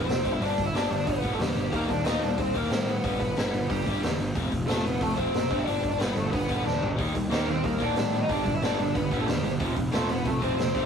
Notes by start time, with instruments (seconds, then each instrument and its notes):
Already playing: lead electric guitar C4 C5
0.06 picked electric bass F1, distorted electric guitar F2 C3, open hi-hat
0.10 snare
0.23 picked electric bass G1, distorted electric guitar G2 D3 G3, kick, open hi-hat
0.32 lead electric guitar E4 E5
0.39 picked electric bass G1, distorted electric guitar G2 D3 G3, lead electric guitar D4 D5, open hi-hat
0.56 picked electric bass G1, distorted electric guitar G2 D3, kick, open hi-hat
0.65 lead electric guitar E4 E5
0.73 picked electric bass G1, distorted electric guitar G2 D3 G3, lead electric guitar D4 D5, snare, open hi-hat
0.89 picked electric bass G1, distorted electric guitar G2 D3, lead electric guitar D4 D5, open hi-hat
1.05 picked electric bass G1, distorted electric guitar G2 D3, lead electric guitar B4, kick, open hi-hat
1.09 lead electric guitar B3
1.21 picked electric bass G1, distorted electric guitar G2 D3 G3, kick, open hi-hat
1.32 lead electric guitar A3 A4
1.39 picked electric bass E2, distorted electric guitar G2 D3, lead electric guitar G3 G4, snare, open hi-hat
1.56 picked electric bass G1, distorted electric guitar G2 D3, open hi-hat
1.72 picked electric bass D#2, distorted electric guitar D#3 G3 A#3, lead electric guitar A#3 A#4, kick, open hi-hat
1.88 picked electric bass D#2, distorted electric guitar D#3 G3, lead electric guitar D4 D5, kick, open hi-hat
2.04 picked electric bass D#2, distorted electric guitar D#3 G3 A#3, lead electric guitar D#4 D#5, snare, open hi-hat
2.21 picked electric bass D#2, distorted electric guitar D#3 G3, lead electric guitar D4 D5, open hi-hat
2.37 picked electric bass D#2, distorted electric guitar D#3 G3, lead electric guitar C4 C5, kick, open hi-hat
2.54 picked electric bass D#2, distorted electric guitar D#3 G3 A#3, lead electric guitar A#3 A#4, kick, open hi-hat
2.70 picked electric bass A2, distorted electric guitar D#3 G3, lead electric guitar A#3 A#4, snare, open hi-hat
2.87 distorted electric guitar D#3 G3, lead electric guitar B3 B4, open hi-hat
3.04 picked electric bass G1, distorted electric guitar G2 D3 G3, kick, open hi-hat
3.20 picked electric bass G1, distorted electric guitar G2 D3, lead electric guitar B3 B4, kick, open hi-hat
3.37 picked electric bass G1, distorted electric guitar G2 D3 G3, snare, open hi-hat
3.53 picked electric bass G1, distorted electric guitar G2 D3, open hi-hat
3.69 picked electric bass G1, distorted electric guitar G2 D3, lead electric guitar G3 G4, kick, open hi-hat
3.86 picked electric bass G1, distorted electric guitar G2 D3 G3, kick, open hi-hat
4.02 picked electric bass E2, distorted electric guitar G2 D3, snare, open hi-hat
4.19 picked electric bass G1, distorted electric guitar G2 D3, open hi-hat
4.35 picked electric bass F1, distorted electric guitar F2 C3 F3, kick, open hi-hat
4.52 picked electric bass F1, distorted electric guitar F2 C3, kick, open hi-hat
4.67 picked electric bass F1, distorted electric guitar F2 C3 F3, lead electric guitar A3 A4, snare, open hi-hat
4.84 picked electric bass F1, distorted electric guitar F2 C3, lead electric guitar B3 B4, open hi-hat
5.00 picked electric bass F1, distorted electric guitar F2 C3, lead electric guitar A3 A4, kick, open hi-hat
5.16 picked electric bass F1, distorted electric guitar F2 C3 F3, lead electric guitar C4 C5, kick, open hi-hat
5.34 picked electric bass F#1, distorted electric guitar F2 C3, snare, open hi-hat
5.49 picked electric bass G1, distorted electric guitar G2 D3 G3, kick, open hi-hat
5.57 lead electric guitar E4 E5
5.64 picked electric bass G1, distorted electric guitar G2 D3 G3, lead electric guitar D4 D5, open hi-hat
5.82 picked electric bass G1, distorted electric guitar G2 D3, kick, open hi-hat
5.90 lead electric guitar D4 D5
5.98 picked electric bass G1, distorted electric guitar G2 D3 G3, lead electric guitar B3 B4, snare, open hi-hat
6.14 picked electric bass G1, distorted electric guitar G2 D3, lead electric guitar A3 A4, open hi-hat
6.26 lead electric guitar A4
6.31 picked electric bass G1, distorted electric guitar G2 D3, lead electric guitar B3 B4, kick, open hi-hat
6.48 picked electric bass G1, distorted electric guitar G2 D3 G3, kick, open hi-hat
6.56 lead electric guitar B3 B4
6.64 picked electric bass E2, distorted electric guitar G2 D3, lead electric guitar D4 D5, snare
6.80 picked electric bass G1, distorted electric guitar G2 D3, floor tom
6.96 picked electric bass D#2, distorted electric guitar D#3 G3 A#3, kick, open hi-hat
7.01 overdriven electric guitar D#4
7.13 picked electric bass D#2, distorted electric guitar D#3 G3, overdriven electric guitar A#3, kick, open hi-hat
7.30 picked electric bass D#2, distorted electric guitar D#3 G3 A#3, lead electric guitar A#3 A#4, overdriven electric guitar D#4, snare, open hi-hat
7.46 picked electric bass D#2, distorted electric guitar D#3 G3, overdriven electric guitar A#3, lead electric guitar C4 C5, open hi-hat
7.62 picked electric bass D#2, distorted electric guitar D#3 G3, lead electric guitar A#3 A#4, kick, open hi-hat
7.66 overdriven electric guitar A#3
7.78 picked electric bass D#2, distorted electric guitar D#3 G3 A#3, lead electric guitar D4, overdriven electric guitar D#4, kick, open hi-hat
7.82 lead electric guitar D5
7.95 picked electric bass A2, distorted electric guitar D#3 G3, overdriven electric guitar A#3, snare, open hi-hat
8.13 distorted electric guitar D#3 G3, overdriven electric guitar A#3, open hi-hat
8.22 lead electric guitar D#4 D#5
8.29 picked electric bass G1, distorted electric guitar G2 D3 G3, lead electric guitar D4 D5, kick, open hi-hat
8.45 picked electric bass G1, distorted electric guitar G2 D3, kick, open hi-hat
8.55 lead electric guitar E4 E5
8.62 picked electric bass G1, distorted electric guitar G2 D3 G3, lead electric guitar D4 D5, snare, open hi-hat
8.78 picked electric bass G1, distorted electric guitar G2 D3, lead electric guitar D4 D5, open hi-hat
8.94 picked electric bass G1, distorted electric guitar G2 D3, lead electric guitar B3 B4, kick, open hi-hat
9.11 picked electric bass G1, distorted electric guitar G2 D3 G3, kick, open hi-hat
9.19 lead electric guitar A3 A4
9.27 picked electric bass E2, distorted electric guitar G2 D3, lead electric guitar G3 G4, snare, open hi-hat
9.43 picked electric bass G1, distorted electric guitar G2 D3, open hi-hat
9.59 picked electric bass F1, distorted electric guitar F2 C3 F3, kick, open hi-hat
9.76 picked electric bass F1, distorted electric guitar F2 C3, kick, open hi-hat
9.91 picked electric bass F1, distorted electric guitar F2 C3 F3, lead electric guitar A3 A4, snare, open hi-hat
10.08 picked electric bass F1, distorted electric guitar F2 C3, lead electric guitar B3 B4, open hi-hat
10.25 picked electric bass F1, distorted electric guitar F2 C3, lead electric guitar A3 A4, kick, open hi-hat
10.41 picked electric bass F1, distorted electric guitar F2 C3 F3, lead electric guitar C4 C5, kick, open hi-hat
10.57 picked electric bass F1, distorted electric guitar F2 C3, snare, open hi-hat
10.74 picked electric bass G1, distorted electric guitar G2 D3 G3, kick, open hi-hat